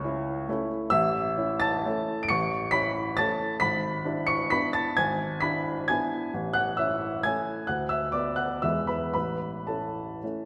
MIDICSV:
0, 0, Header, 1, 2, 480
1, 0, Start_track
1, 0, Key_signature, 3, "major"
1, 0, Tempo, 437637
1, 999, Time_signature, 3, 2, 24, 8
1, 999, Tempo, 469116
1, 1959, Tempo, 439239
1, 4359, Tempo, 455235
1, 8679, Tempo, 503356
1, 9639, Tempo, 537634
1, 10802, End_track
2, 0, Start_track
2, 0, Title_t, "Upright piano"
2, 0, Program_c, 0, 0
2, 0, Control_c, 0, 64, 127
2, 0, Note_on_c, 0, 37, 61
2, 0, Note_on_c, 0, 73, 67
2, 0, Note_on_c, 0, 85, 91
2, 47, Note_on_c, 0, 61, 45
2, 54, Note_on_c, 0, 64, 50
2, 483, Note_off_c, 0, 61, 0
2, 487, Note_off_c, 0, 64, 0
2, 532, Note_on_c, 0, 57, 48
2, 536, Control_c, 0, 64, 0
2, 539, Note_on_c, 0, 61, 48
2, 543, Note_on_c, 0, 64, 53
2, 544, Note_off_c, 0, 37, 0
2, 721, Note_off_c, 0, 73, 0
2, 759, Note_off_c, 0, 85, 0
2, 960, Note_off_c, 0, 57, 0
2, 963, Note_off_c, 0, 61, 0
2, 965, Note_off_c, 0, 64, 0
2, 989, Note_on_c, 0, 88, 94
2, 1003, Note_on_c, 0, 76, 69
2, 1008, Note_on_c, 0, 33, 63
2, 1217, Control_c, 0, 64, 127
2, 1462, Note_off_c, 0, 33, 0
2, 1473, Note_on_c, 0, 61, 42
2, 1479, Note_on_c, 0, 64, 50
2, 1682, Note_off_c, 0, 76, 0
2, 1700, Note_on_c, 0, 93, 92
2, 1716, Note_on_c, 0, 81, 74
2, 1717, Note_off_c, 0, 88, 0
2, 1919, Note_off_c, 0, 61, 0
2, 1922, Note_off_c, 0, 64, 0
2, 1966, Note_on_c, 0, 57, 49
2, 1970, Note_on_c, 0, 61, 46
2, 1974, Control_c, 0, 64, 0
2, 1974, Note_on_c, 0, 64, 50
2, 2325, Note_off_c, 0, 81, 0
2, 2360, Note_off_c, 0, 93, 0
2, 2374, Note_on_c, 0, 98, 70
2, 2401, Note_off_c, 0, 57, 0
2, 2403, Note_off_c, 0, 61, 0
2, 2405, Note_off_c, 0, 64, 0
2, 2435, Note_on_c, 0, 97, 99
2, 2443, Note_off_c, 0, 98, 0
2, 2450, Note_on_c, 0, 85, 76
2, 2455, Note_on_c, 0, 33, 58
2, 2667, Control_c, 0, 64, 127
2, 2891, Note_off_c, 0, 85, 0
2, 2900, Note_on_c, 0, 95, 94
2, 2912, Note_off_c, 0, 33, 0
2, 2912, Note_on_c, 0, 83, 70
2, 2916, Note_off_c, 0, 97, 0
2, 2918, Note_on_c, 0, 61, 46
2, 2923, Note_on_c, 0, 64, 48
2, 3367, Note_off_c, 0, 61, 0
2, 3370, Note_off_c, 0, 64, 0
2, 3374, Note_off_c, 0, 83, 0
2, 3399, Note_on_c, 0, 93, 95
2, 3402, Note_off_c, 0, 95, 0
2, 3416, Note_on_c, 0, 81, 71
2, 3422, Note_on_c, 0, 57, 43
2, 3426, Control_c, 0, 64, 0
2, 3428, Note_on_c, 0, 64, 49
2, 3430, Note_on_c, 0, 61, 45
2, 3844, Note_off_c, 0, 57, 0
2, 3847, Note_off_c, 0, 64, 0
2, 3848, Note_off_c, 0, 61, 0
2, 3852, Note_off_c, 0, 81, 0
2, 3870, Note_on_c, 0, 95, 94
2, 3876, Note_off_c, 0, 93, 0
2, 3881, Note_on_c, 0, 83, 69
2, 3889, Note_on_c, 0, 32, 54
2, 4059, Control_c, 0, 64, 127
2, 4347, Note_off_c, 0, 32, 0
2, 4367, Note_on_c, 0, 62, 42
2, 4375, Note_on_c, 0, 64, 47
2, 4555, Note_off_c, 0, 83, 0
2, 4591, Note_on_c, 0, 97, 94
2, 4592, Note_off_c, 0, 95, 0
2, 4604, Note_on_c, 0, 85, 75
2, 4810, Note_off_c, 0, 62, 0
2, 4814, Note_off_c, 0, 64, 0
2, 4833, Note_off_c, 0, 85, 0
2, 4842, Note_on_c, 0, 95, 92
2, 4844, Note_off_c, 0, 97, 0
2, 4851, Note_on_c, 0, 83, 66
2, 4858, Control_c, 0, 64, 0
2, 4862, Note_on_c, 0, 59, 42
2, 4863, Note_on_c, 0, 62, 45
2, 4872, Note_on_c, 0, 64, 46
2, 5080, Note_off_c, 0, 83, 0
2, 5083, Note_on_c, 0, 93, 76
2, 5090, Note_on_c, 0, 81, 64
2, 5092, Note_off_c, 0, 95, 0
2, 5293, Note_off_c, 0, 59, 0
2, 5293, Note_off_c, 0, 62, 0
2, 5298, Note_off_c, 0, 64, 0
2, 5309, Note_off_c, 0, 81, 0
2, 5322, Note_off_c, 0, 93, 0
2, 5330, Note_on_c, 0, 92, 89
2, 5342, Note_on_c, 0, 80, 65
2, 5345, Note_on_c, 0, 32, 56
2, 5526, Control_c, 0, 64, 127
2, 5774, Note_off_c, 0, 80, 0
2, 5793, Note_on_c, 0, 95, 79
2, 5795, Note_off_c, 0, 32, 0
2, 5801, Note_off_c, 0, 92, 0
2, 5805, Note_on_c, 0, 83, 65
2, 5812, Note_on_c, 0, 62, 41
2, 5817, Note_on_c, 0, 64, 42
2, 6259, Note_off_c, 0, 62, 0
2, 6262, Note_off_c, 0, 64, 0
2, 6264, Note_off_c, 0, 83, 0
2, 6292, Note_off_c, 0, 95, 0
2, 6292, Note_on_c, 0, 92, 75
2, 6301, Note_on_c, 0, 80, 59
2, 6309, Control_c, 0, 64, 0
2, 6310, Note_on_c, 0, 59, 39
2, 6314, Note_on_c, 0, 62, 39
2, 6319, Note_on_c, 0, 64, 42
2, 6736, Note_off_c, 0, 59, 0
2, 6738, Note_off_c, 0, 62, 0
2, 6741, Note_off_c, 0, 64, 0
2, 6741, Note_off_c, 0, 80, 0
2, 6769, Note_off_c, 0, 92, 0
2, 6776, Note_on_c, 0, 33, 48
2, 6984, Note_on_c, 0, 90, 82
2, 6992, Control_c, 0, 64, 127
2, 6999, Note_on_c, 0, 78, 63
2, 7225, Note_off_c, 0, 78, 0
2, 7231, Note_on_c, 0, 88, 64
2, 7233, Note_off_c, 0, 33, 0
2, 7234, Note_off_c, 0, 90, 0
2, 7245, Note_on_c, 0, 76, 47
2, 7251, Note_on_c, 0, 61, 34
2, 7254, Note_on_c, 0, 64, 40
2, 7694, Note_off_c, 0, 61, 0
2, 7696, Note_off_c, 0, 64, 0
2, 7700, Note_off_c, 0, 76, 0
2, 7722, Note_on_c, 0, 92, 79
2, 7727, Note_off_c, 0, 88, 0
2, 7737, Note_on_c, 0, 80, 61
2, 7745, Control_c, 0, 64, 0
2, 7745, Note_on_c, 0, 57, 35
2, 7747, Note_on_c, 0, 61, 34
2, 7750, Note_on_c, 0, 64, 38
2, 8162, Note_off_c, 0, 57, 0
2, 8162, Note_off_c, 0, 61, 0
2, 8164, Note_off_c, 0, 64, 0
2, 8167, Note_off_c, 0, 80, 0
2, 8183, Note_on_c, 0, 90, 62
2, 8192, Note_off_c, 0, 92, 0
2, 8195, Note_on_c, 0, 78, 47
2, 8201, Note_on_c, 0, 38, 43
2, 8367, Control_c, 0, 64, 127
2, 8413, Note_off_c, 0, 78, 0
2, 8414, Note_on_c, 0, 88, 72
2, 8423, Note_off_c, 0, 90, 0
2, 8426, Note_on_c, 0, 76, 53
2, 8656, Note_on_c, 0, 86, 68
2, 8657, Note_off_c, 0, 76, 0
2, 8664, Note_off_c, 0, 38, 0
2, 8669, Note_off_c, 0, 88, 0
2, 8670, Note_on_c, 0, 74, 49
2, 8675, Note_on_c, 0, 59, 34
2, 8886, Note_on_c, 0, 90, 65
2, 8889, Note_off_c, 0, 74, 0
2, 8897, Note_on_c, 0, 78, 49
2, 8898, Note_off_c, 0, 86, 0
2, 9107, Note_off_c, 0, 59, 0
2, 9123, Note_off_c, 0, 78, 0
2, 9135, Note_off_c, 0, 90, 0
2, 9135, Note_on_c, 0, 88, 68
2, 9141, Note_on_c, 0, 76, 54
2, 9148, Note_on_c, 0, 40, 40
2, 9151, Note_on_c, 0, 56, 30
2, 9154, Note_on_c, 0, 59, 30
2, 9160, Note_on_c, 0, 64, 30
2, 9161, Control_c, 0, 64, 0
2, 9365, Control_c, 0, 64, 127
2, 9370, Note_off_c, 0, 76, 0
2, 9376, Note_on_c, 0, 83, 58
2, 9384, Note_off_c, 0, 88, 0
2, 9388, Note_on_c, 0, 71, 42
2, 9602, Note_off_c, 0, 56, 0
2, 9604, Note_off_c, 0, 59, 0
2, 9607, Note_off_c, 0, 64, 0
2, 9611, Note_off_c, 0, 83, 0
2, 9619, Note_off_c, 0, 71, 0
2, 9624, Note_off_c, 0, 40, 0
2, 9626, Note_on_c, 0, 83, 60
2, 9637, Note_on_c, 0, 71, 47
2, 9643, Note_on_c, 0, 33, 36
2, 9650, Control_c, 0, 64, 0
2, 9809, Control_c, 0, 64, 127
2, 10080, Note_off_c, 0, 71, 0
2, 10102, Note_off_c, 0, 33, 0
2, 10102, Note_on_c, 0, 81, 44
2, 10108, Note_off_c, 0, 83, 0
2, 10113, Note_on_c, 0, 69, 34
2, 10117, Note_on_c, 0, 61, 29
2, 10121, Note_on_c, 0, 64, 31
2, 10561, Note_off_c, 0, 61, 0
2, 10563, Note_off_c, 0, 64, 0
2, 10607, Note_on_c, 0, 57, 30
2, 10608, Control_c, 0, 64, 0
2, 10609, Note_on_c, 0, 61, 27
2, 10615, Note_on_c, 0, 64, 31
2, 10802, Note_off_c, 0, 57, 0
2, 10802, Note_off_c, 0, 61, 0
2, 10802, Note_off_c, 0, 64, 0
2, 10802, Note_off_c, 0, 69, 0
2, 10802, Note_off_c, 0, 81, 0
2, 10802, End_track
0, 0, End_of_file